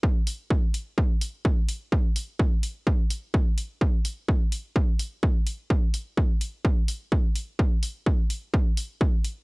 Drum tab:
HH |-o-o-o-o|-o-o-o-o|-o-o-o-o|-o-o-o-o|
BD |o-o-o-o-|o-o-o-o-|o-o-o-o-|o-o-o-o-|

HH |-o-o-o-o|
BD |o-o-o-o-|